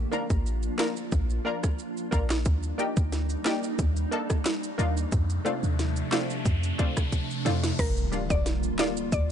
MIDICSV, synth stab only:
0, 0, Header, 1, 2, 480
1, 0, Start_track
1, 0, Key_signature, -2, "major"
1, 0, Tempo, 666667
1, 1770, Time_signature, 4, 2, 24, 8
1, 6708, End_track
2, 0, Start_track
2, 0, Title_t, "Synth stab"
2, 0, Program_c, 0, 62
2, 83, Note_on_c, 0, 58, 87
2, 87, Note_on_c, 0, 62, 82
2, 91, Note_on_c, 0, 65, 82
2, 96, Note_on_c, 0, 70, 98
2, 188, Note_off_c, 0, 58, 0
2, 190, Note_off_c, 0, 62, 0
2, 192, Note_off_c, 0, 65, 0
2, 195, Note_off_c, 0, 70, 0
2, 562, Note_on_c, 0, 58, 96
2, 566, Note_on_c, 0, 62, 87
2, 570, Note_on_c, 0, 65, 85
2, 575, Note_on_c, 0, 70, 101
2, 668, Note_off_c, 0, 58, 0
2, 670, Note_off_c, 0, 62, 0
2, 672, Note_off_c, 0, 65, 0
2, 674, Note_off_c, 0, 70, 0
2, 1042, Note_on_c, 0, 58, 96
2, 1047, Note_on_c, 0, 62, 85
2, 1051, Note_on_c, 0, 65, 85
2, 1056, Note_on_c, 0, 70, 101
2, 1148, Note_off_c, 0, 58, 0
2, 1150, Note_off_c, 0, 62, 0
2, 1152, Note_off_c, 0, 65, 0
2, 1155, Note_off_c, 0, 70, 0
2, 1520, Note_on_c, 0, 58, 89
2, 1525, Note_on_c, 0, 62, 81
2, 1530, Note_on_c, 0, 65, 85
2, 1533, Note_on_c, 0, 70, 101
2, 1627, Note_off_c, 0, 58, 0
2, 1630, Note_off_c, 0, 62, 0
2, 1632, Note_off_c, 0, 65, 0
2, 1634, Note_off_c, 0, 70, 0
2, 2002, Note_on_c, 0, 58, 91
2, 2006, Note_on_c, 0, 62, 78
2, 2009, Note_on_c, 0, 63, 84
2, 2013, Note_on_c, 0, 67, 97
2, 2108, Note_off_c, 0, 58, 0
2, 2110, Note_off_c, 0, 62, 0
2, 2111, Note_off_c, 0, 63, 0
2, 2113, Note_off_c, 0, 67, 0
2, 2482, Note_on_c, 0, 58, 93
2, 2486, Note_on_c, 0, 62, 90
2, 2491, Note_on_c, 0, 63, 82
2, 2495, Note_on_c, 0, 67, 108
2, 2588, Note_off_c, 0, 58, 0
2, 2590, Note_off_c, 0, 62, 0
2, 2592, Note_off_c, 0, 63, 0
2, 2594, Note_off_c, 0, 67, 0
2, 2962, Note_on_c, 0, 58, 92
2, 2966, Note_on_c, 0, 62, 86
2, 2970, Note_on_c, 0, 63, 82
2, 2974, Note_on_c, 0, 69, 104
2, 3068, Note_off_c, 0, 58, 0
2, 3070, Note_off_c, 0, 62, 0
2, 3072, Note_off_c, 0, 63, 0
2, 3074, Note_off_c, 0, 69, 0
2, 3441, Note_on_c, 0, 58, 90
2, 3446, Note_on_c, 0, 62, 84
2, 3450, Note_on_c, 0, 63, 83
2, 3454, Note_on_c, 0, 65, 101
2, 3547, Note_off_c, 0, 58, 0
2, 3550, Note_off_c, 0, 62, 0
2, 3552, Note_off_c, 0, 63, 0
2, 3554, Note_off_c, 0, 65, 0
2, 3922, Note_on_c, 0, 57, 90
2, 3926, Note_on_c, 0, 60, 82
2, 3931, Note_on_c, 0, 62, 85
2, 3934, Note_on_c, 0, 65, 102
2, 4028, Note_off_c, 0, 57, 0
2, 4030, Note_off_c, 0, 60, 0
2, 4032, Note_off_c, 0, 62, 0
2, 4034, Note_off_c, 0, 65, 0
2, 4402, Note_on_c, 0, 57, 98
2, 4406, Note_on_c, 0, 60, 85
2, 4410, Note_on_c, 0, 62, 86
2, 4415, Note_on_c, 0, 65, 104
2, 4508, Note_off_c, 0, 57, 0
2, 4510, Note_off_c, 0, 60, 0
2, 4512, Note_off_c, 0, 62, 0
2, 4514, Note_off_c, 0, 65, 0
2, 4883, Note_on_c, 0, 57, 95
2, 4887, Note_on_c, 0, 60, 85
2, 4892, Note_on_c, 0, 62, 88
2, 4895, Note_on_c, 0, 65, 101
2, 4988, Note_off_c, 0, 57, 0
2, 4990, Note_off_c, 0, 60, 0
2, 4993, Note_off_c, 0, 62, 0
2, 4994, Note_off_c, 0, 65, 0
2, 5364, Note_on_c, 0, 57, 86
2, 5368, Note_on_c, 0, 60, 80
2, 5372, Note_on_c, 0, 62, 82
2, 5377, Note_on_c, 0, 65, 99
2, 5469, Note_off_c, 0, 57, 0
2, 5471, Note_off_c, 0, 60, 0
2, 5473, Note_off_c, 0, 62, 0
2, 5475, Note_off_c, 0, 65, 0
2, 5844, Note_on_c, 0, 55, 75
2, 5848, Note_on_c, 0, 58, 67
2, 5852, Note_on_c, 0, 62, 71
2, 5856, Note_on_c, 0, 65, 84
2, 5949, Note_off_c, 0, 55, 0
2, 5951, Note_off_c, 0, 58, 0
2, 5953, Note_off_c, 0, 62, 0
2, 5955, Note_off_c, 0, 65, 0
2, 6323, Note_on_c, 0, 55, 78
2, 6327, Note_on_c, 0, 58, 73
2, 6332, Note_on_c, 0, 62, 72
2, 6336, Note_on_c, 0, 65, 93
2, 6428, Note_off_c, 0, 55, 0
2, 6430, Note_off_c, 0, 58, 0
2, 6433, Note_off_c, 0, 62, 0
2, 6435, Note_off_c, 0, 65, 0
2, 6708, End_track
0, 0, End_of_file